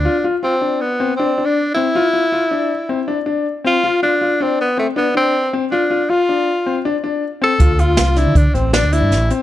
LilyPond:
<<
  \new Staff \with { instrumentName = "Grand piano" } { \time 5/4 \key d \dorian \tempo 4 = 159 f'8 f'8 f'8 d'4 c'8 d'8 d'4 c'8 | f'8 f'8 f'8 d'4 c'8 d'8 d'4 c'8 | f'8 f'8 f'8 d'4 c'8 d'8 d'4 c'8 | f'8 f'8 f'8 d'4 c'8 d'8 d'4 c'8 |
f'8 f'8 f'8 d'4 c'8 d'8 d'4 c'8 | }
  \new Staff \with { instrumentName = "Tenor saxophone" } { \time 5/4 \key d \dorian d'8 r8 c'4 b4 c'8. d'8. e'8~ | e'2.~ e'8 r4 f'8~ | f'8 d'4 c'8 b8 a8 b8 c'4 r8 | d'4 f'2 r4. a'8~ |
a'8 f'4 e'8 d'8 c'8 d'8 e'4 r8 | }
  \new Staff \with { instrumentName = "Fingered electric bass" } { \clef bass \time 5/4 \key d \dorian r1 r4 | r1 r4 | r1 r4 | r1 r4 |
d,4 c,8. d16 d16 r16 a,,8. d,8 g,16 a,,8 r8 | }
  \new DrumStaff \with { instrumentName = "Drums" } \drummode { \time 5/4 r4 r4 r4 r4 r4 | r4 r4 r4 r4 r4 | r4 r4 r4 r4 r4 | r4 r4 r4 r4 r4 |
<hh bd>8 hh8 <hh sn>8 <hh sn>8 <hh bd>8 hh8 <hh sn>8 hh8 <hh sn>8 hh8 | }
>>